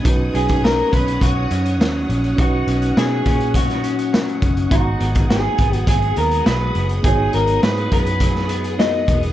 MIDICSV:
0, 0, Header, 1, 7, 480
1, 0, Start_track
1, 0, Key_signature, 5, "major"
1, 0, Tempo, 582524
1, 44, Time_signature, 4, 2, 24, 8
1, 7686, End_track
2, 0, Start_track
2, 0, Title_t, "String machine"
2, 0, Program_c, 0, 50
2, 0, Note_on_c, 0, 78, 70
2, 0, Note_on_c, 0, 87, 83
2, 37, Note_on_c, 0, 73, 76
2, 3848, Note_off_c, 0, 73, 0
2, 3851, Note_off_c, 0, 87, 0
2, 3883, Note_on_c, 0, 87, 88
2, 3884, Note_on_c, 0, 68, 78
2, 7686, Note_off_c, 0, 68, 0
2, 7686, Note_off_c, 0, 78, 0
2, 7686, Note_off_c, 0, 87, 0
2, 7686, End_track
3, 0, Start_track
3, 0, Title_t, "Clean electric guitar"
3, 0, Program_c, 1, 27
3, 287, Note_on_c, 1, 68, 86
3, 509, Note_off_c, 1, 68, 0
3, 529, Note_on_c, 1, 70, 100
3, 766, Note_off_c, 1, 70, 0
3, 770, Note_on_c, 1, 71, 97
3, 1006, Note_off_c, 1, 71, 0
3, 1010, Note_on_c, 1, 66, 76
3, 1694, Note_off_c, 1, 66, 0
3, 1983, Note_on_c, 1, 66, 94
3, 2454, Note_off_c, 1, 66, 0
3, 2458, Note_on_c, 1, 68, 98
3, 2933, Note_off_c, 1, 68, 0
3, 2936, Note_on_c, 1, 66, 78
3, 3617, Note_off_c, 1, 66, 0
3, 3884, Note_on_c, 1, 66, 87
3, 4331, Note_off_c, 1, 66, 0
3, 4367, Note_on_c, 1, 68, 77
3, 4746, Note_off_c, 1, 68, 0
3, 4746, Note_on_c, 1, 66, 77
3, 4837, Note_off_c, 1, 66, 0
3, 4847, Note_on_c, 1, 68, 85
3, 5086, Note_off_c, 1, 68, 0
3, 5090, Note_on_c, 1, 70, 89
3, 5310, Note_off_c, 1, 70, 0
3, 5328, Note_on_c, 1, 71, 91
3, 5661, Note_off_c, 1, 71, 0
3, 5810, Note_on_c, 1, 68, 97
3, 6030, Note_off_c, 1, 68, 0
3, 6051, Note_on_c, 1, 70, 84
3, 6282, Note_off_c, 1, 70, 0
3, 6286, Note_on_c, 1, 71, 92
3, 6524, Note_off_c, 1, 71, 0
3, 6534, Note_on_c, 1, 71, 97
3, 7215, Note_off_c, 1, 71, 0
3, 7245, Note_on_c, 1, 75, 100
3, 7578, Note_off_c, 1, 75, 0
3, 7686, End_track
4, 0, Start_track
4, 0, Title_t, "Reed electric piano"
4, 0, Program_c, 2, 4
4, 0, Control_c, 2, 64, 127
4, 24, Note_on_c, 2, 61, 73
4, 38, Note_on_c, 2, 63, 70
4, 54, Note_on_c, 2, 66, 65
4, 55, Control_c, 2, 64, 0
4, 67, Note_on_c, 2, 71, 81
4, 186, Control_c, 2, 64, 127
4, 1922, Note_off_c, 2, 61, 0
4, 1929, Note_off_c, 2, 63, 0
4, 1937, Note_off_c, 2, 66, 0
4, 1943, Note_off_c, 2, 71, 0
4, 1950, Note_on_c, 2, 61, 63
4, 1962, Note_on_c, 2, 63, 55
4, 1975, Note_on_c, 2, 66, 58
4, 1991, Note_on_c, 2, 71, 64
4, 3844, Note_off_c, 2, 61, 0
4, 3851, Note_off_c, 2, 63, 0
4, 3857, Note_off_c, 2, 66, 0
4, 3865, Note_off_c, 2, 71, 0
4, 3872, Note_on_c, 2, 59, 59
4, 3887, Note_on_c, 2, 63, 54
4, 3896, Control_c, 2, 64, 0
4, 3900, Note_on_c, 2, 66, 58
4, 3914, Note_on_c, 2, 82, 71
4, 4027, Control_c, 2, 64, 127
4, 5764, Note_off_c, 2, 59, 0
4, 5772, Note_off_c, 2, 63, 0
4, 5778, Note_off_c, 2, 66, 0
4, 5785, Note_off_c, 2, 82, 0
4, 5791, Note_on_c, 2, 59, 59
4, 5803, Note_on_c, 2, 63, 54
4, 5819, Note_on_c, 2, 66, 55
4, 5834, Note_on_c, 2, 73, 67
4, 7208, Note_off_c, 2, 59, 0
4, 7213, Note_off_c, 2, 63, 0
4, 7221, Note_off_c, 2, 66, 0
4, 7229, Note_off_c, 2, 73, 0
4, 7239, Note_on_c, 2, 59, 45
4, 7244, Note_on_c, 2, 63, 43
4, 7249, Note_on_c, 2, 66, 42
4, 7258, Note_on_c, 2, 70, 54
4, 7686, Note_off_c, 2, 59, 0
4, 7686, Note_off_c, 2, 63, 0
4, 7686, Note_off_c, 2, 66, 0
4, 7686, Note_off_c, 2, 70, 0
4, 7686, End_track
5, 0, Start_track
5, 0, Title_t, "Clean electric guitar"
5, 0, Program_c, 3, 27
5, 0, Note_on_c, 3, 54, 61
5, 0, Note_on_c, 3, 59, 55
5, 44, Note_on_c, 3, 47, 85
5, 50, Note_on_c, 3, 63, 67
5, 284, Note_off_c, 3, 59, 0
5, 288, Note_on_c, 3, 61, 50
5, 522, Note_off_c, 3, 54, 0
5, 525, Note_on_c, 3, 54, 56
5, 751, Note_off_c, 3, 61, 0
5, 761, Note_on_c, 3, 61, 60
5, 998, Note_off_c, 3, 54, 0
5, 1001, Note_on_c, 3, 54, 55
5, 1236, Note_off_c, 3, 61, 0
5, 1245, Note_on_c, 3, 61, 60
5, 1483, Note_off_c, 3, 54, 0
5, 1486, Note_on_c, 3, 54, 57
5, 1712, Note_off_c, 3, 61, 0
5, 1722, Note_on_c, 3, 61, 55
5, 1962, Note_off_c, 3, 63, 0
5, 1965, Note_off_c, 3, 47, 0
5, 1965, Note_on_c, 3, 63, 72
5, 2194, Note_off_c, 3, 61, 0
5, 2204, Note_on_c, 3, 61, 51
5, 2444, Note_off_c, 3, 54, 0
5, 2448, Note_on_c, 3, 54, 62
5, 2674, Note_off_c, 3, 61, 0
5, 2684, Note_on_c, 3, 61, 60
5, 2919, Note_off_c, 3, 54, 0
5, 2923, Note_on_c, 3, 54, 58
5, 3150, Note_off_c, 3, 61, 0
5, 3160, Note_on_c, 3, 61, 59
5, 3402, Note_off_c, 3, 54, 0
5, 3406, Note_on_c, 3, 54, 58
5, 3634, Note_off_c, 3, 61, 0
5, 3644, Note_on_c, 3, 61, 57
5, 3884, Note_on_c, 3, 44, 77
5, 3885, Note_off_c, 3, 63, 0
5, 3888, Note_on_c, 3, 63, 66
5, 3932, Note_off_c, 3, 61, 0
5, 4128, Note_on_c, 3, 59, 52
5, 4363, Note_off_c, 3, 54, 0
5, 4366, Note_on_c, 3, 54, 57
5, 4592, Note_off_c, 3, 59, 0
5, 4602, Note_on_c, 3, 59, 62
5, 4842, Note_off_c, 3, 54, 0
5, 4846, Note_on_c, 3, 54, 53
5, 5074, Note_off_c, 3, 59, 0
5, 5084, Note_on_c, 3, 59, 61
5, 5319, Note_off_c, 3, 54, 0
5, 5323, Note_on_c, 3, 54, 59
5, 5556, Note_off_c, 3, 59, 0
5, 5565, Note_on_c, 3, 59, 55
5, 5795, Note_off_c, 3, 44, 0
5, 5801, Note_off_c, 3, 63, 0
5, 5805, Note_on_c, 3, 44, 81
5, 5810, Note_on_c, 3, 63, 73
5, 6034, Note_off_c, 3, 59, 0
5, 6044, Note_on_c, 3, 59, 52
5, 6282, Note_off_c, 3, 54, 0
5, 6285, Note_on_c, 3, 54, 60
5, 6519, Note_off_c, 3, 59, 0
5, 6529, Note_on_c, 3, 59, 60
5, 6761, Note_off_c, 3, 54, 0
5, 6764, Note_on_c, 3, 54, 57
5, 6993, Note_off_c, 3, 59, 0
5, 7003, Note_on_c, 3, 59, 61
5, 7242, Note_off_c, 3, 54, 0
5, 7246, Note_on_c, 3, 54, 58
5, 7477, Note_off_c, 3, 59, 0
5, 7487, Note_on_c, 3, 59, 53
5, 7686, Note_off_c, 3, 44, 0
5, 7686, Note_off_c, 3, 54, 0
5, 7686, Note_off_c, 3, 59, 0
5, 7686, Note_off_c, 3, 63, 0
5, 7686, End_track
6, 0, Start_track
6, 0, Title_t, "Picked electric bass"
6, 0, Program_c, 4, 34
6, 43, Note_on_c, 4, 35, 91
6, 236, Note_off_c, 4, 35, 0
6, 285, Note_on_c, 4, 35, 85
6, 669, Note_off_c, 4, 35, 0
6, 766, Note_on_c, 4, 35, 74
6, 958, Note_off_c, 4, 35, 0
6, 1000, Note_on_c, 4, 35, 91
6, 1194, Note_off_c, 4, 35, 0
6, 1244, Note_on_c, 4, 42, 91
6, 1486, Note_off_c, 4, 42, 0
6, 1486, Note_on_c, 4, 39, 88
6, 1677, Note_off_c, 4, 39, 0
6, 1725, Note_on_c, 4, 34, 87
6, 1917, Note_off_c, 4, 34, 0
6, 1965, Note_on_c, 4, 35, 92
6, 2157, Note_off_c, 4, 35, 0
6, 2204, Note_on_c, 4, 35, 91
6, 2397, Note_off_c, 4, 35, 0
6, 2448, Note_on_c, 4, 47, 91
6, 2639, Note_off_c, 4, 47, 0
6, 2685, Note_on_c, 4, 46, 81
6, 3612, Note_off_c, 4, 46, 0
6, 3645, Note_on_c, 4, 30, 88
6, 3837, Note_off_c, 4, 30, 0
6, 3885, Note_on_c, 4, 32, 91
6, 4077, Note_off_c, 4, 32, 0
6, 4126, Note_on_c, 4, 32, 81
6, 4509, Note_off_c, 4, 32, 0
6, 4605, Note_on_c, 4, 32, 69
6, 4797, Note_off_c, 4, 32, 0
6, 4839, Note_on_c, 4, 32, 87
6, 5033, Note_off_c, 4, 32, 0
6, 5084, Note_on_c, 4, 39, 80
6, 5276, Note_off_c, 4, 39, 0
6, 5328, Note_on_c, 4, 35, 90
6, 5518, Note_off_c, 4, 35, 0
6, 5567, Note_on_c, 4, 30, 81
6, 5758, Note_off_c, 4, 30, 0
6, 5804, Note_on_c, 4, 32, 91
6, 5996, Note_off_c, 4, 32, 0
6, 6049, Note_on_c, 4, 32, 82
6, 6239, Note_off_c, 4, 32, 0
6, 6290, Note_on_c, 4, 44, 97
6, 6479, Note_off_c, 4, 44, 0
6, 6525, Note_on_c, 4, 42, 78
6, 7451, Note_off_c, 4, 42, 0
6, 7483, Note_on_c, 4, 28, 80
6, 7674, Note_off_c, 4, 28, 0
6, 7686, End_track
7, 0, Start_track
7, 0, Title_t, "Drums"
7, 41, Note_on_c, 9, 36, 111
7, 43, Note_on_c, 9, 42, 86
7, 124, Note_off_c, 9, 36, 0
7, 125, Note_off_c, 9, 42, 0
7, 285, Note_on_c, 9, 42, 73
7, 367, Note_off_c, 9, 42, 0
7, 400, Note_on_c, 9, 42, 49
7, 409, Note_on_c, 9, 36, 88
7, 482, Note_off_c, 9, 42, 0
7, 491, Note_off_c, 9, 36, 0
7, 535, Note_on_c, 9, 38, 109
7, 617, Note_off_c, 9, 38, 0
7, 765, Note_on_c, 9, 36, 86
7, 766, Note_on_c, 9, 42, 78
7, 848, Note_off_c, 9, 36, 0
7, 848, Note_off_c, 9, 42, 0
7, 888, Note_on_c, 9, 42, 53
7, 970, Note_off_c, 9, 42, 0
7, 1000, Note_on_c, 9, 36, 88
7, 1007, Note_on_c, 9, 42, 90
7, 1083, Note_off_c, 9, 36, 0
7, 1090, Note_off_c, 9, 42, 0
7, 1240, Note_on_c, 9, 42, 68
7, 1323, Note_off_c, 9, 42, 0
7, 1364, Note_on_c, 9, 42, 50
7, 1446, Note_off_c, 9, 42, 0
7, 1492, Note_on_c, 9, 38, 108
7, 1574, Note_off_c, 9, 38, 0
7, 1727, Note_on_c, 9, 42, 66
7, 1810, Note_off_c, 9, 42, 0
7, 1845, Note_on_c, 9, 42, 43
7, 1928, Note_off_c, 9, 42, 0
7, 1964, Note_on_c, 9, 36, 121
7, 1965, Note_on_c, 9, 42, 83
7, 2046, Note_off_c, 9, 36, 0
7, 2047, Note_off_c, 9, 42, 0
7, 2205, Note_on_c, 9, 42, 74
7, 2288, Note_off_c, 9, 42, 0
7, 2322, Note_on_c, 9, 42, 51
7, 2404, Note_off_c, 9, 42, 0
7, 2449, Note_on_c, 9, 38, 111
7, 2532, Note_off_c, 9, 38, 0
7, 2683, Note_on_c, 9, 42, 75
7, 2685, Note_on_c, 9, 36, 91
7, 2765, Note_off_c, 9, 42, 0
7, 2768, Note_off_c, 9, 36, 0
7, 2805, Note_on_c, 9, 42, 51
7, 2888, Note_off_c, 9, 42, 0
7, 2920, Note_on_c, 9, 36, 89
7, 2925, Note_on_c, 9, 42, 94
7, 3002, Note_off_c, 9, 36, 0
7, 3008, Note_off_c, 9, 42, 0
7, 3045, Note_on_c, 9, 42, 36
7, 3048, Note_on_c, 9, 38, 38
7, 3128, Note_off_c, 9, 42, 0
7, 3131, Note_off_c, 9, 38, 0
7, 3161, Note_on_c, 9, 42, 65
7, 3244, Note_off_c, 9, 42, 0
7, 3286, Note_on_c, 9, 42, 55
7, 3368, Note_off_c, 9, 42, 0
7, 3411, Note_on_c, 9, 38, 111
7, 3494, Note_off_c, 9, 38, 0
7, 3530, Note_on_c, 9, 42, 31
7, 3612, Note_off_c, 9, 42, 0
7, 3644, Note_on_c, 9, 36, 92
7, 3647, Note_on_c, 9, 42, 67
7, 3727, Note_off_c, 9, 36, 0
7, 3730, Note_off_c, 9, 42, 0
7, 3764, Note_on_c, 9, 42, 47
7, 3847, Note_off_c, 9, 42, 0
7, 3883, Note_on_c, 9, 36, 119
7, 3884, Note_on_c, 9, 42, 89
7, 3965, Note_off_c, 9, 36, 0
7, 3966, Note_off_c, 9, 42, 0
7, 4123, Note_on_c, 9, 42, 75
7, 4205, Note_off_c, 9, 42, 0
7, 4241, Note_on_c, 9, 42, 49
7, 4250, Note_on_c, 9, 36, 89
7, 4324, Note_off_c, 9, 42, 0
7, 4332, Note_off_c, 9, 36, 0
7, 4371, Note_on_c, 9, 38, 107
7, 4454, Note_off_c, 9, 38, 0
7, 4599, Note_on_c, 9, 42, 74
7, 4604, Note_on_c, 9, 36, 91
7, 4681, Note_off_c, 9, 42, 0
7, 4686, Note_off_c, 9, 36, 0
7, 4722, Note_on_c, 9, 42, 53
7, 4805, Note_off_c, 9, 42, 0
7, 4839, Note_on_c, 9, 36, 83
7, 4840, Note_on_c, 9, 42, 94
7, 4921, Note_off_c, 9, 36, 0
7, 4923, Note_off_c, 9, 42, 0
7, 4961, Note_on_c, 9, 42, 34
7, 5044, Note_off_c, 9, 42, 0
7, 5077, Note_on_c, 9, 42, 68
7, 5160, Note_off_c, 9, 42, 0
7, 5202, Note_on_c, 9, 42, 52
7, 5284, Note_off_c, 9, 42, 0
7, 5324, Note_on_c, 9, 38, 103
7, 5407, Note_off_c, 9, 38, 0
7, 5561, Note_on_c, 9, 42, 65
7, 5643, Note_off_c, 9, 42, 0
7, 5679, Note_on_c, 9, 42, 48
7, 5762, Note_off_c, 9, 42, 0
7, 5800, Note_on_c, 9, 42, 88
7, 5802, Note_on_c, 9, 36, 114
7, 5883, Note_off_c, 9, 42, 0
7, 5884, Note_off_c, 9, 36, 0
7, 6039, Note_on_c, 9, 42, 71
7, 6122, Note_off_c, 9, 42, 0
7, 6157, Note_on_c, 9, 42, 48
7, 6239, Note_off_c, 9, 42, 0
7, 6288, Note_on_c, 9, 38, 112
7, 6370, Note_off_c, 9, 38, 0
7, 6406, Note_on_c, 9, 42, 35
7, 6489, Note_off_c, 9, 42, 0
7, 6523, Note_on_c, 9, 42, 76
7, 6524, Note_on_c, 9, 36, 89
7, 6605, Note_off_c, 9, 42, 0
7, 6607, Note_off_c, 9, 36, 0
7, 6644, Note_on_c, 9, 42, 54
7, 6726, Note_off_c, 9, 42, 0
7, 6759, Note_on_c, 9, 36, 89
7, 6762, Note_on_c, 9, 42, 97
7, 6841, Note_off_c, 9, 36, 0
7, 6844, Note_off_c, 9, 42, 0
7, 6885, Note_on_c, 9, 38, 41
7, 6967, Note_off_c, 9, 38, 0
7, 6996, Note_on_c, 9, 42, 73
7, 7078, Note_off_c, 9, 42, 0
7, 7121, Note_on_c, 9, 42, 53
7, 7203, Note_off_c, 9, 42, 0
7, 7248, Note_on_c, 9, 38, 109
7, 7330, Note_off_c, 9, 38, 0
7, 7482, Note_on_c, 9, 36, 91
7, 7484, Note_on_c, 9, 42, 64
7, 7565, Note_off_c, 9, 36, 0
7, 7567, Note_off_c, 9, 42, 0
7, 7604, Note_on_c, 9, 42, 46
7, 7686, Note_off_c, 9, 42, 0
7, 7686, End_track
0, 0, End_of_file